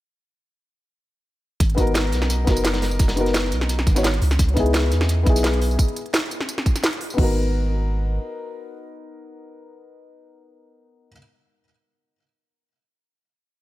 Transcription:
1.60 2.14 G#1 loud
1.60 kick loud
1.60 closed hi-hat loud
1.60 closed hi-hat medium
1.60 tambourine soft
1.70 closed hi-hat soft
1.75 2.43 B3 medium
1.75 2.45 D#4 medium
1.75 2.46 F#4 medium
1.75 kick medium
1.75 closed hi-hat medium
1.75 tambourine soft
1.81 2.47 A#4 loud
1.87 closed hi-hat soft
1.95 snare loud
1.95 closed hi-hat medium
1.95 tambourine soft
2.12 2.46 B1 medium
2.12 snare soft
2.12 closed hi-hat medium
2.12 tambourine soft
2.22 snare medium
2.30 closed hi-hat medium
2.30 tambourine soft
2.45 3.54 F#1 loud
2.45 3.13 B3 medium
2.45 3.15 D#4 medium
2.45 kick loud
2.45 snare loud
2.45 closed hi-hat medium
2.45 tambourine soft
2.49 3.16 F#4 medium
2.49 3.17 A#4 loud
2.57 closed hi-hat soft
2.57 tambourine medium
2.65 snare loud
2.65 snare soft
2.65 closed hi-hat loud
2.65 closed hi-hat medium
2.65 tambourine soft
2.74 snare loud
2.74 closed hi-hat soft
2.74 closed hi-hat medium
2.82 snare loud
2.82 closed hi-hat medium
2.82 open hi-hat medium
2.91 tambourine soft
2.99 kick loud
2.99 snare soft
2.99 closed hi-hat loud
2.99 closed hi-hat medium
2.99 tambourine medium
3.08 snare loud
3.08 closed hi-hat soft
3.08 closed hi-hat medium
3.14 3.93 B3 medium
3.14 3.94 D#4 medium
3.14 3.95 F#4 medium
3.14 closed hi-hat medium
3.14 tambourine soft
3.20 3.96 A#4 medium
3.26 snare soft
3.26 closed hi-hat soft
3.26 closed hi-hat medium
3.34 snare loud
3.34 closed hi-hat medium
3.34 tambourine soft
3.45 snare soft
3.52 3.86 B1 medium
3.52 closed hi-hat medium
3.52 tambourine soft
3.61 snare medium
3.69 closed hi-hat medium
3.69 tambourine soft
3.79 snare soft
3.87 4.21 G#1 loud
3.87 kick loud
3.87 closed hi-hat medium
3.87 tambourine soft
3.95 4.03 B3 medium
3.95 4.04 D#4 medium
3.95 4.04 F#4 medium
3.95 4.05 C#5 loud
3.95 snare soft
3.95 closed hi-hat soft
3.95 tambourine medium
4.04 snare loud
4.04 closed hi-hat medium
4.04 tambourine soft
4.14 closed hi-hat soft
4.22 4.38 C#2 medium
4.22 closed hi-hat medium
4.22 open hi-hat medium
4.31 snare medium
4.31 tambourine soft
4.39 4.93 C#2 loud
4.39 kick loud
4.39 closed hi-hat medium
4.39 tambourine soft
4.49 closed hi-hat soft
4.54 5.22 B3 loud
4.54 5.24 D#4 medium
4.54 5.25 E4 medium
4.54 kick medium
4.54 closed hi-hat medium
4.54 tambourine soft
4.59 5.26 G#4 loud
4.66 closed hi-hat soft
4.74 snare loud
4.74 closed hi-hat medium
4.74 tambourine soft
4.91 5.25 E2 medium
4.91 snare soft
4.91 closed hi-hat medium
4.91 tambourine soft
5.01 snare medium
5.09 closed hi-hat medium
5.09 tambourine soft
5.23 5.78 B1 loud
5.23 5.93 B3 medium
5.23 5.94 D#4 medium
5.23 kick loud
5.23 closed hi-hat medium
5.23 tambourine soft
5.27 5.95 E4 medium
5.27 5.96 G#4 loud
5.36 snare soft
5.36 closed hi-hat soft
5.36 tambourine medium
5.44 snare loud
5.44 closed hi-hat medium
5.44 tambourine soft
5.54 closed hi-hat soft
5.61 closed hi-hat medium
5.61 open hi-hat medium
5.71 tambourine soft
5.79 kick loud
5.79 closed hi-hat medium
5.79 tambourine medium
5.88 closed hi-hat soft
5.96 closed hi-hat medium
5.96 tambourine soft
6.06 closed hi-hat soft
6.14 snare loud
6.14 closed hi-hat medium
6.14 tambourine soft
6.31 closed hi-hat medium
6.31 tambourine soft
6.41 snare medium
6.49 closed hi-hat medium
6.49 tambourine soft
6.58 snare soft
6.66 kick loud
6.66 closed hi-hat medium
6.66 tambourine soft
6.76 snare soft
6.76 closed hi-hat soft
6.76 tambourine medium
6.84 snare loud
6.84 closed hi-hat medium
6.84 tambourine soft
6.93 closed hi-hat soft
7.01 open hi-hat medium
7.10 11.07 B3 medium
7.10 tambourine soft
7.17 8.19 G#1 medium
7.17 11.10 D#4 medium
7.17 11.13 F#4 medium
7.17 kick loud
7.17 crash medium
7.23 11.16 A#4 medium

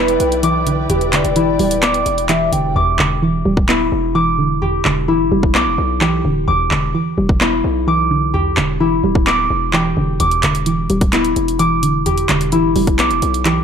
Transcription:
0.00 0.18 E1 loud
0.00 0.20 E2 medium
0.00 0.43 D3 medium
0.00 0.42 E3 medium
0.00 0.90 G3 loud
0.00 1.13 B3 medium
0.00 1.36 E4 medium
0.00 2.72 E4 medium
0.00 0.89 G4 medium
0.00 0.40 B4 loud
0.00 2.72 B4 medium
0.00 2.72 D5 medium
0.00 2.72 G5 medium
0.00 0.42 D6 loud
0.08 closed hi-hat medium
0.20 0.87 B1 loud
0.20 closed hi-hat medium
0.32 closed hi-hat medium
0.43 1.35 E3 loud
0.43 1.81 D6 loud
0.43 closed hi-hat medium
0.66 1.12 D3 medium
0.66 closed hi-hat medium
0.90 1.23 E1 loud
0.90 2.06 E2 medium
0.90 2.29 G4 medium
0.90 closed hi-hat medium
1.01 closed hi-hat medium
1.13 2.29 D3 medium
1.13 2.25 D5 medium
1.13 clap loud
1.13 closed hi-hat medium
1.25 1.58 E1 loud
1.25 closed hi-hat medium
1.36 2.28 E3 medium
1.36 3.68 E4 medium
1.36 closed hi-hat medium
1.59 2.04 D1 loud
1.59 2.76 G3 loud
1.59 open hi-hat medium
1.71 closed hi-hat medium
1.83 2.76 B3 medium
1.83 2.75 D6 loud
1.83 clap loud
1.83 closed hi-hat medium
1.94 closed hi-hat medium
2.06 2.51 E1 loud
2.06 closed hi-hat medium
2.18 closed hi-hat medium
2.29 2.76 E3 loud
2.29 4.61 G4 medium
2.29 2.51 E5 medium
2.29 clap loud
2.29 closed hi-hat medium
2.52 2.75 E1 loud
2.52 2.76 D3 medium
2.52 2.75 G5 medium
2.52 closed hi-hat medium
2.76 2.98 E1 loud
2.76 3.92 E2 medium
2.76 4.14 D6 loud
2.99 3.44 E1 loud
2.99 4.15 D3 medium
2.99 clap medium
3.22 4.14 E3 medium
3.45 3.90 D1 loud
3.45 4.62 G3 loud
3.57 kick medium
3.69 4.85 B3 medium
3.69 5.08 E4 medium
3.69 clap loud
3.92 4.81 E1 loud
4.15 5.07 E3 medium
4.15 5.54 D6 loud
4.38 4.84 D3 medium
4.62 5.78 E2 medium
4.62 6.01 G4 medium
4.85 5.10 E1 loud
4.85 6.01 D3 medium
4.85 clap medium
5.08 5.21 D1 loud
5.08 6.00 E3 medium
5.08 7.41 E4 medium
5.20 5.31 E1 loud
5.31 5.56 E1 loud
5.31 6.48 G3 medium
5.43 kick medium
5.55 5.68 B1 loud
5.55 6.48 B3 medium
5.55 6.47 D6 loud
5.55 clap loud
5.66 5.77 E1 loud
5.78 6.23 B1 loud
6.01 6.48 E3 loud
6.01 8.33 G4 medium
6.01 clap loud
6.25 6.47 D1 loud
6.25 6.48 D3 medium
6.48 6.70 E1 loud
6.48 7.64 E2 medium
6.48 7.86 D6 loud
6.71 6.93 E1 loud
6.71 7.87 D3 medium
6.71 clap medium
6.94 7.86 E3 medium
7.18 7.62 E1 loud
7.18 8.34 G3 loud
7.29 kick medium
7.41 8.57 B3 medium
7.41 8.80 E4 medium
7.41 clap loud
7.64 8.53 B1 loud
7.87 8.79 E3 loud
7.87 9.26 D6 loud
8.11 8.56 D3 medium
8.34 9.50 E2 medium
8.34 9.73 G4 medium
8.57 9.02 E1 loud
8.57 9.73 D3 medium
8.57 clap medium
8.80 9.72 E3 medium
8.80 11.13 E4 medium
9.04 9.48 D1 loud
9.04 10.20 G3 medium
9.15 kick medium
9.27 10.20 B3 medium
9.27 10.20 D6 loud
9.27 clap loud
9.50 9.95 E1 loud
9.73 10.20 E3 medium
9.73 12.06 G4 medium
9.73 clap loud
9.97 10.19 E1 loud
9.97 10.20 D3 medium
10.20 10.42 E1 loud
10.20 11.36 E2 medium
10.20 11.58 D6 loud
10.20 closed hi-hat medium
10.31 closed hi-hat soft
10.43 10.88 E1 loud
10.43 11.60 D3 medium
10.43 clap medium
10.43 closed hi-hat medium
10.55 closed hi-hat medium
10.66 11.58 E3 medium
10.66 closed hi-hat medium
10.90 11.34 D1 loud
10.90 12.06 G3 loud
10.90 closed hi-hat medium
11.01 kick medium
11.01 closed hi-hat medium
11.13 12.29 B3 medium
11.13 12.52 E4 medium
11.13 clap loud
11.13 closed hi-hat medium
11.25 closed hi-hat medium
11.36 12.26 E1 loud
11.36 closed hi-hat medium
11.48 closed hi-hat medium
11.59 12.51 E3 medium
11.59 12.98 D6 loud
11.59 closed hi-hat medium
11.83 12.28 D3 medium
11.83 closed hi-hat medium
12.06 13.22 E2 medium
12.06 13.45 G4 medium
12.06 closed hi-hat medium
12.18 closed hi-hat soft
12.29 12.54 E1 loud
12.29 13.46 D3 medium
12.29 clap loud
12.29 closed hi-hat medium
12.41 closed hi-hat medium
12.52 12.66 D1 loud
12.52 13.44 E3 medium
12.52 13.64 E4 medium
12.52 closed hi-hat medium
12.64 12.75 E1 loud
12.76 13.01 E1 loud
12.76 13.64 G3 medium
12.76 open hi-hat medium
12.87 kick medium
12.87 closed hi-hat medium
12.99 13.12 B1 loud
12.99 13.64 B3 medium
12.99 13.64 D6 loud
12.99 clap loud
12.99 closed hi-hat medium
13.11 13.22 E1 loud
13.11 closed hi-hat medium
13.22 13.64 B1 loud
13.22 closed hi-hat medium
13.34 closed hi-hat medium
13.45 13.64 E3 loud
13.45 13.64 G4 medium
13.45 clap medium
13.45 closed hi-hat medium

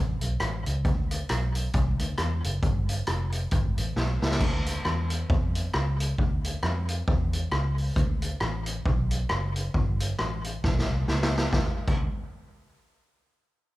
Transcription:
0.00 0.18 A1 medium
0.21 0.38 B1 medium
0.21 closed hi-hat medium
0.40 0.62 A1 medium
0.40 cross-stick loud
0.40 closed hi-hat medium
0.66 0.82 C#2 medium
0.66 closed hi-hat medium
0.85 1.23 D2 loud
0.85 kick loud
0.85 closed hi-hat medium
1.11 closed hi-hat loud
1.29 1.68 B1 medium
1.29 cross-stick loud
1.29 closed hi-hat medium
1.55 closed hi-hat medium
1.73 1.96 C2 loud
1.73 kick loud
1.73 closed hi-hat medium
1.99 2.16 D2 medium
1.99 closed hi-hat medium
2.18 2.40 E2 loud
2.18 cross-stick loud
2.18 closed hi-hat medium
2.44 2.60 F#1 medium
2.44 closed hi-hat medium
2.63 3.01 G1 loud
2.63 kick loud
2.63 closed hi-hat medium
2.89 closed hi-hat loud
3.07 3.45 F1 medium
3.07 cross-stick loud
3.07 closed hi-hat medium
3.32 closed hi-hat medium
3.51 3.74 G1 medium
3.51 kick loud
3.51 closed hi-hat medium
3.78 3.94 A1 medium
3.78 closed hi-hat medium
3.96 4.18 B1 loud
3.96 snare medium
4.22 4.38 C#2 medium
4.22 snare medium
4.31 snare medium
4.40 4.78 D2 loud
4.40 kick loud
4.40 crash loud
4.66 closed hi-hat loud
4.85 5.23 E2 loud
4.85 cross-stick loud
5.10 closed hi-hat medium
5.30 5.68 F2 medium
5.30 kick loud
5.55 closed hi-hat medium
5.74 6.12 C#2 loud
5.74 cross-stick loud
6.00 closed hi-hat medium
6.18 6.56 D2 loud
6.18 kick loud
6.44 closed hi-hat loud
6.63 7.01 F2 medium
6.63 cross-stick loud
6.88 closed hi-hat medium
7.08 7.46 E2 medium
7.08 kick loud
7.33 closed hi-hat medium
7.52 7.90 C#2 loud
7.52 cross-stick loud
7.78 open hi-hat medium
7.96 8.34 D2 loud
7.96 kick loud
7.96 hi-hat pedal medium
8.22 closed hi-hat loud
8.40 8.79 A1 loud
8.40 cross-stick loud
8.66 closed hi-hat medium
8.86 9.23 B1 loud
8.86 kick loud
9.11 closed hi-hat medium
9.29 9.68 F#1 loud
9.29 cross-stick loud
9.56 closed hi-hat medium
9.74 10.12 G1 loud
9.74 kick loud
10.00 closed hi-hat loud
10.19 10.57 A1 medium
10.19 cross-stick loud
10.44 closed hi-hat medium
10.64 10.86 B1 loud
10.64 kick loud
10.64 snare medium
10.79 snare medium
10.89 11.05 C2 medium
11.08 11.46 C#2 medium
11.08 snare medium
11.23 snare loud
11.37 snare medium
11.53 11.67 D2 loud
11.53 kick loud
11.53 snare medium
11.88 12.08 D2 loud
11.88 kick loud
11.88 crash medium

